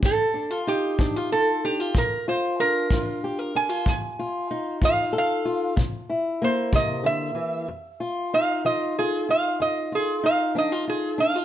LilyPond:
<<
  \new Staff \with { instrumentName = "Resonator guitar played with a steel bar" } { \time 12/8 \key bes \major \tempo 4. = 63 a'4 g'4 a'8 g'8 bes'8 c''8 bes'4 r8 aes''8 | aes''4. f''8 f''4 r4 c''8 ees''8 e''4 | r4 f''8 ees''8 aes'8 f''8 ees''8 aes'8 f''8 ees''8 aes'8 f''8 | }
  \new Staff \with { instrumentName = "Steel-string acoustic guitar" } { \time 12/8 \key bes \major << { r8 d'16 f'16 ees'8 d'16 f'16 f'8 d'16 f'16 r8 f'8 d'8 f'8 g'16 bes'16 d'16 f'16 | r8 f'8 ees'8 f'8 a'8 f'8 r8 e'8 bes2 | r8 f'8 ees'8 f'8 f'8 f'4 f'8 ees'8 d'16 f'16 f'8 d'16 f'16 | } \\ { f,4 r8 f4 r8 bes,4 r8 f4 r8 | f,4 r8 f4 r8 c4 r8 c8 d8 e8 | f,4 r8 f4 r8 f,4 r8 f4 r8 | } >> }
  \new DrumStaff \with { instrumentName = "Drums" } \drummode { \time 12/8 bd4. bd4. bd4. bd4. | bd4. bd4. bd4. bd4. | r4. r4. r4. r4. | }
>>